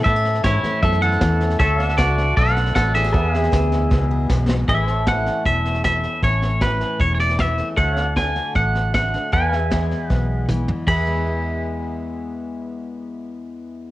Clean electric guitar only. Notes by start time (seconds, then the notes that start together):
0.04 A4 E5
0.44 E4 C#5
0.83 A4 E5
1.02 A4 F#5
1.59 A4 E5
1.98 F#4 D5
2.37 A4 F#5
2.75 A4 F#5
2.95 G#4 E5
4.69 E5
5.08 F#5
5.46 E5
5.85 E5
6.24 C#5
6.62 B4
7.01 C#5
7.15 C#5
7.20 D5
7.40 E5
7.78 F#5
8.17 G#5
8.56 F#5
8.95 F#5
9.33 G#5
10.10 F#5
10.88 B5